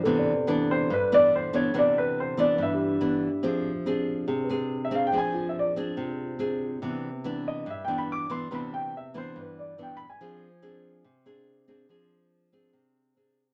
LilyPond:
<<
  \new Staff \with { instrumentName = "Grand piano" } { \time 4/4 \key c \major \tempo 4 = 142 r4. c''8 b'8 d''8 c''8 des''8 | d''8 b'8 c''8 d''8 e''2~ | e''4 r2 r16 e''16 f''16 g''16 | aes''8. e''16 d''8 r2 r8 |
r4. ees''8 \tuplet 3/2 { e''8 g''8 b''8 } d'''8 c'''8 | b''8 g''8 e''8 c''8 b'8 d''8 \tuplet 3/2 { g''8 b''8 aes''8~ } | aes''2~ aes''16 r4. r16 | r1 | }
  \new Staff \with { instrumentName = "Tine electric piano" } { \time 4/4 \key c \major a'16 d''2~ d''8. r4 | r2 d'16 g'4.~ g'16~ | g'8. r4 r16 aes'16 b'4.~ b'16~ | b'8 f'2~ f'8. r8. |
r1 | r1 | r1 | r1 | }
  \new Staff \with { instrumentName = "Nylon-string guitar" } { \time 4/4 \key c \major << { <e b d'>8 r8 <e b d'>4 r8 <e b d'>4 <e b d'>8 | <e b d'>4. <e b d'>4. <e b d'>8 r8 | <c' d' aes'>8 r8 <c' d' aes'>4. <c' d' aes'>4 <c' d' aes'>8 | <c' d' aes'>4. <c' d' aes'>4. <c' d' aes'>4 |
<e b d'>8 r8 <e b d'>4 r8 <e b d'>4 <e b d'>8 | <e b d'>4 r8 <e b d'>4. <e b d'>8 r8 | <c' d' aes'>8 r8 <c' d' aes'>4 r8 <c' d' aes'>4 <c' d' aes'>8 | <c' d' aes'>4. <c' d' aes'>4. <c' d' aes'>8 r8 | } \\ { c2 g,2 | c2 g,2 | f2 c2 | f2 c2 |
c2 g,2 | c2 g,2 | f2 c2 | f2 c2 | } >> }
>>